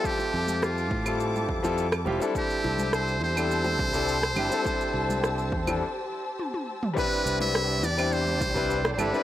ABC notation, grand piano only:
X:1
M:4/4
L:1/16
Q:1/4=104
K:C
V:1 name="Grand piano"
[G,CFAe]6- [G,CFAe] [G,CEFA]4 [G,CEFA] z2 [G,CEFG] [G,CDEA]- | [G,CDEA]6- [G,CDEA] [G,CDEA]4 [G,CDEA] z2 [G,CDEG] [G,CDEA]- | [G,CDEA]6- [G,CDEA] [G,CDEA] z8 | [G,CDEB]6 z [G,CDEc]4 [G,CDEB] z2 [G,CDEA] [G,CDEB] |]